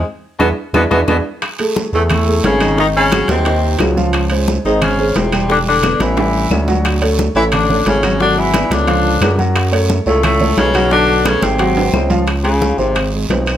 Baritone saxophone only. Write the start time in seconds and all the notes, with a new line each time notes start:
0.39 B2
0.74 B2
0.90 B2
1.08 B2
1.93 A2
2.11 A2
2.46 C#3
2.80 D#3
2.96 C#3
3.30 C3
4.65 D#3
4.83 C#3
5.16 C3
5.51 D3
5.68 D3
6.01 E3
7.35 E3
7.53 D3
7.87 C#3
8.21 D3
8.38 E3
8.72 D3
10.06 A2
10.22 A2
10.57 C#3
10.91 D3
11.25 C#3
11.42 C3
12.43 C#3
12.78 C3